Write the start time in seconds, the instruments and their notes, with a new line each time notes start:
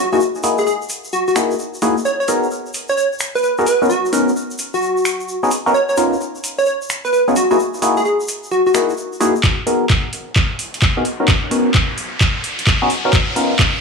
0.12 synth stab A#3 D#4 E4 F#4 G#4, digital synth lead F#4, shaker
0.20 shaker
0.35 shaker
0.43 synth stab A#3 D#4 E4 F#4 G#4, open hi-hat, shaker
0.58 digital synth lead G#4, shaker
0.67 digital synth lead G#4, shaker
0.82 shaker
0.89 open hi-hat, shaker
1.04 shaker
1.13 digital synth lead F#4, shaker
1.28 digital synth lead F#4, shaker
1.36 synth stab A#3 D#4 E4 F#4 G#4, finger snap, open hi-hat, shaker
1.51 shaker
1.59 shaker
1.74 shaker
1.82 synth stab A#3 D#4 E4 F#4 G#4, open hi-hat, shaker
1.97 shaker
2.05 digital synth lead C#5, shaker
2.20 digital synth lead C#5, shaker
2.28 synth stab B3 D#4 F#4 G#4 A#4, open hi-hat, shaker
2.43 shaker
2.51 shaker
2.66 shaker
2.74 open hi-hat, shaker
2.88 digital synth lead C#5, shaker
2.97 digital synth lead C#5, shaker
3.12 shaker
3.19 finger snap, open hi-hat, shaker
3.35 digital synth lead B4, shaker
3.43 digital synth lead B4, shaker
3.58 synth stab B3 D#4 F#4 G#4 A#4, shaker
3.67 digital synth lead B4, open hi-hat, shaker
3.82 synth stab B3 C#4 D#4 F#4 A#4, shaker
3.90 digital synth lead F#4, shaker
4.05 shaker
4.13 synth stab B3 C#4 D#4 F#4 A#4, open hi-hat, shaker
4.28 shaker
4.36 shaker
4.50 shaker
4.58 open hi-hat, shaker
4.74 digital synth lead F#4, shaker
4.82 shaker
4.97 shaker
5.05 finger snap, open hi-hat, shaker
5.20 shaker
5.28 shaker
5.43 synth stab B3 C#4 D#4 F#4 G#4, shaker
5.51 open hi-hat, shaker
5.66 synth stab B3 C#4 D#4 F#4 A#4, shaker
5.74 digital synth lead C#5, shaker
5.89 digital synth lead C#5, shaker
5.97 synth stab B3 C#4 D#4 F4 A#4, open hi-hat, shaker
6.13 shaker
6.21 shaker
6.35 shaker
6.44 open hi-hat, shaker
6.58 digital synth lead C#5, shaker
6.65 digital synth lead C#5, shaker
6.82 shaker
6.89 finger snap, open hi-hat, shaker
7.05 digital synth lead B4, shaker
7.13 digital synth lead B4, shaker
7.28 synth stab B3 C#4 D#4 F4 G#4, shaker
7.36 digital synth lead F#4, open hi-hat, shaker
7.51 synth stab A#3 D#4 E4 F#4 G#4, digital synth lead F#4, shaker
7.59 shaker
7.74 shaker
7.82 synth stab A#3 D#4 E4 F#4 G#4, open hi-hat, shaker
7.97 digital synth lead G#4, shaker
8.05 digital synth lead G#4, shaker
8.20 shaker
8.28 open hi-hat, shaker
8.43 shaker
8.51 digital synth lead F#4, shaker
8.66 digital synth lead F#4, shaker
8.74 synth stab A#3 D#4 E4 F#4 G#4, finger snap, open hi-hat, shaker
8.89 shaker
8.97 shaker
9.13 shaker
9.20 synth stab A#3 D#4 E4 F#4 G#4, open hi-hat, shaker
9.36 shaker
9.44 sub bass G#1, kick, clap, closed hi-hat, riser
9.67 synth stab B3 D#4 F#4 G#4 A#4, open hi-hat
9.82 sub bass B1
9.90 kick, clap, closed hi-hat
10.13 sub bass G#1, open hi-hat
10.36 sub bass G#1, kick, clap, closed hi-hat
10.59 sub bass F#1, open hi-hat
10.74 closed hi-hat
10.82 kick, clap, closed hi-hat
10.97 sub bass B1, synth stab B3 D#4 F#4 G#4 A#4
11.05 open hi-hat
11.20 synth stab B3 C#4 D#4 F#4 A#4
11.28 kick, clap, closed hi-hat
11.51 synth stab B3 C#4 D#4 F#4 A#4, open hi-hat
11.66 sub bass D#2
11.74 kick, clap, closed hi-hat
11.97 sub bass B1, open hi-hat
12.21 kick, clap, closed hi-hat
12.44 open hi-hat
12.59 sub bass B1, closed hi-hat
12.67 kick, clap, closed hi-hat
12.82 sub bass B1, synth stab B3 C#4 D#4 F#4 G#4
12.90 open hi-hat
13.05 synth stab B3 C#4 D#4 F#4 A#4
13.13 sub bass C#2, kick, clap, closed hi-hat
13.36 synth stab B3 C#4 D#4 F4 A#4, open hi-hat
13.51 sub bass F2
13.59 kick, clap, closed hi-hat